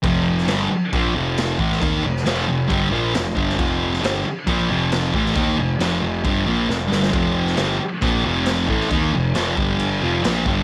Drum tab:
CC |x---x---x---x---|x---x---x---x---|x---x---x---x---|x---x---x-------|
SD |---oo-------o--o|---oo-------o--o|---oo-------o--o|----o-------o-oo|
BD |o-------o-----o-|o-------o-----o-|o-------o-----o-|o-------o-------|

CC |x---x---x---x---|x---x---x---x---|
SD |---oo-------o--o|----o-------o---|
BD |o-------o-----o-|o-----o-------o-|